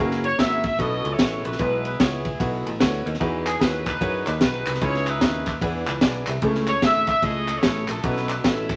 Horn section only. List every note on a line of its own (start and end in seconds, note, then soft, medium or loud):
0.25 0.38 C#5 loud
0.40 0.64 E5 loud
0.65 0.79 E5 loud
0.80 1.56 F#4 medium
0.80 1.11 A4 medium
0.80 1.12 D#5 loud
1.12 1.57 E4 medium
1.12 1.56 A4 medium
1.12 1.45 C#5 loud
1.45 1.58 B4 loud
1.59 1.99 E4 medium
1.59 1.99 G#4 medium
1.59 1.83 B4 medium
1.85 1.99 B4 loud
2.00 2.77 B3 medium
2.00 2.77 E4 medium
2.00 2.81 G#4 medium
3.46 3.60 G#4 medium
3.61 3.85 B4 loud
3.87 4.42 D#4 medium
3.87 4.42 G#4 medium
3.87 4.24 B4 loud
4.27 4.41 B4 loud
4.43 4.80 D#4 medium
4.43 4.80 G#4 medium
4.43 4.79 B4 loud
4.82 5.07 E4 medium
4.82 5.58 G#4 loud
4.82 5.07 C#5 loud
5.08 5.59 D#4 medium
5.08 5.59 E4 medium
5.08 5.63 B4 loud
6.68 6.82 C#5 loud
6.83 7.07 E5 loud
7.08 7.22 E5 loud
7.24 7.56 G#4 medium
7.24 7.88 A4 medium
7.24 7.56 D#5 loud
7.57 8.01 E4 medium
7.57 8.01 G#4 medium
7.57 7.89 C#5 loud
7.90 8.04 A4 loud
8.04 8.76 E4 medium
8.04 8.76 F#4 medium
8.04 8.28 B4 loud
8.29 8.43 B4 loud
8.45 8.76 A4 medium
8.45 8.76 C#5 medium
8.45 8.76 E5 loud